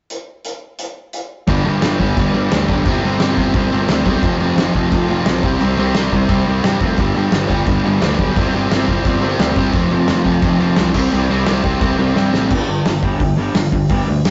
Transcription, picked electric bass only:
1.48 G1
1.65 G1
1.82 G1
2.00 G1
2.17 G1
2.35 G1
2.52 D2
2.68 B1
2.86 G1
3.04 G1
3.20 G1
3.37 G1
3.54 G1
3.73 G1
3.89 D2
4.06 B1
4.23 F1
4.40 F1
4.57 F1
4.75 F1
4.92 F1
5.09 F1
5.27 B1
5.43 C2
5.61 C2
5.78 C2
5.95 C2
6.12 C2
6.29 C2
6.47 C2
6.64 G2
6.81 F1
6.98 G1
7.15 G1
7.32 G1
7.50 G1
7.67 G1
7.84 G1
8.01 D2
8.19 B1
8.36 G1
8.54 G1
8.72 G1
8.88 G1
9.05 G1
9.22 G1
9.39 D2
9.56 G1
9.74 F1
9.93 F1
10.09 F1
10.25 F1
10.43 F1
10.61 F1
10.79 C2
10.94 C2
11.13 C2
11.31 C2
11.48 C2
11.63 C2
11.82 C2
11.99 C2
12.16 G2
12.34 A1
12.50 G1
12.69 G1
12.86 G1
13.03 G1
13.20 G1
13.37 G1
13.55 G1
13.72 G1
13.89 G1
14.08 D2
14.26 G1

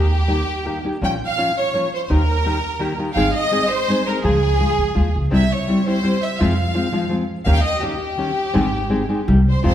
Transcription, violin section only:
Already playing: G4
1.05 G5
1.25 F5
1.59 C#5
1.94 C5
2.05 C5
2.11 A#4
3.13 F5 G5
3.34 D#5
3.69 C5
4.07 A#4
4.23 G#4
5.34 E5
5.52 C#5
5.89 C5
6.24 E5
6.40 F5
7.46 F5
7.53 F5 G5
7.63 D#5
7.80 G4
9.49 C5
9.64 C5

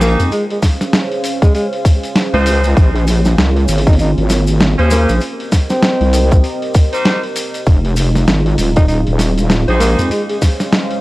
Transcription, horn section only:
Already playing: D#4 G4 G#4 C5
2.34 D#4 F4 G#4 C5
4.78 C#4 F4 G#4 C5
6.93 D#4 G4 A#4 C5
9.68 D#4 G4 G#4 C5

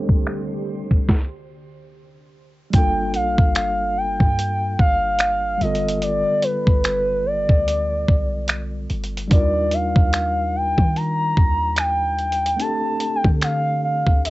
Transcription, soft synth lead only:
2.74 G5
3.15 F5
3.56 F5
3.97 G5
4.79 F5
5.62 D#5
6.02 D5
6.43 B4
7.26 D5
9.32 D5
9.73 F5
10.56 G5
10.96 A#5
11.79 G5
12.61 A5
13.16 G5
13.44 F5
13.85 F5
14.25 D#5

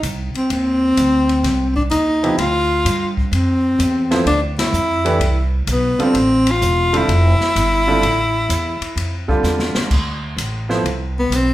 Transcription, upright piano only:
2.23 C3 F3 B3 E4 G4
4.11 F3 B3 E4 A4 C5
5.05 E3 A3 D4 G4 B4
5.99 D3 G3 C4 F4 A4
6.93 D3 G3 C4 F4 A4
7.87 D3 G3 C4 F4 A4
9.28 D3 G3 C4 F4 A4
10.69 F3 B3 E4 A4 C5

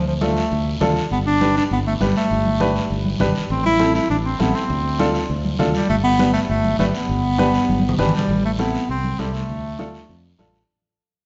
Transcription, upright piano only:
0.21 D4 F4 A4
0.81 D4 F4 A4
1.41 D4 G4 B4
2.00 D4 G4 B4
2.60 D4 G4 B4
3.20 D4 G4 B4
3.79 C4 E4 A4
4.39 C4 E4 A4
4.99 D4 F4 A4
5.59 D4 F4 A4
6.19 D4 G4 B4
6.79 D4 G4 B4
7.38 D4 G4 B4
7.99 D4 G4 B4
8.59 C4 E4 A4
9.19 C4 E4 A4
9.79 D4 F4 A4
10.39 D4 F4 A4

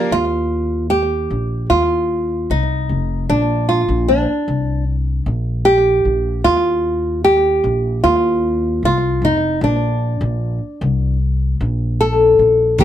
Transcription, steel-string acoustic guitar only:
Already playing: F3 A#3 D4 A#4
12.78 D#3 F3 A#3 F4 G4

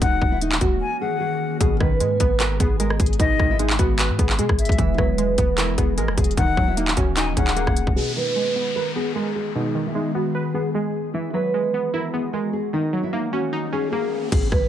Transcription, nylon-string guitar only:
0.02 D#4
0.32 E4
0.42 D#4
0.61 F#4
1.01 G#4
1.20 G#4
1.60 G#4
1.81 B4
2.40 A#4
2.60 G#4
2.80 A#4
3.00 G#4
3.20 D#4
3.51 E4
3.60 D#4
3.79 F#4
4.18 G#4
4.39 G#4
4.78 E4
4.98 B4
5.58 A#4
5.78 G#4
5.98 A#4
6.17 G#4
6.38 D#4
6.68 E4
6.78 D#4
6.97 F#4
7.37 G#4
7.56 G#4
7.96 G#4
8.17 B4
8.76 A#4
8.96 G#4
9.15 A#4
9.35 G#4
9.56 D#4
9.86 E4
9.95 D#4
10.15 F#4
10.54 G#4
10.75 G#4
11.14 E4
11.33 B4
11.94 A#4
12.13 G#4
12.33 A#4
12.53 G#4
12.74 D#4
13.03 E4
13.13 D#4
13.32 F#4
13.73 G#4
13.92 G#4
14.32 G#4
14.52 B4

